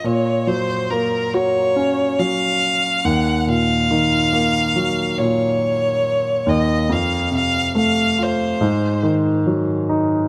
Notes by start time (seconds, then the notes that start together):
0.04 A#2 C#5
0.47 F#3 C5
0.90 A#3 A#4
1.34 F#4 C#5
1.76 C#4
2.19 F#3 F5
3.05 D#2 F#5
3.40 F#5
3.47 A#2 F5
3.91 D#3
4.33 A#3
4.76 F#3
5.18 A#2 C#5
6.47 D#2 D#5
6.89 F2 F5
7.32 C3 F5
7.75 A3 F5
8.18 F4
8.23 C5
8.61 G#2
9.03 D#3
9.47 F#3
9.89 D#4